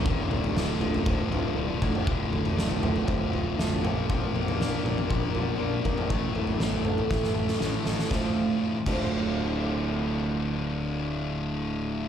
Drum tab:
CC |----------------|----------------|----------------|----------------|
SD |----o-----------|----o-------o---|----o-----------|----o---oo-oo-oo|
T2 |---------------o|------o-o-----o-|---------------o|------o---------|
FT |o-oo--ooo-o---o-|o-oo-oooo-o--oo-|o-oo--ooo-o---o-|o-oo-ooo--------|
BD |o-------o-----o-|o-------o-------|o-------o-----o-|o-------o-------|

CC |------x---------|----------------|
SD |o---------------|----------------|
T2 |----------------|----------------|
FT |----------------|----------------|
BD |o-----o---------|----------------|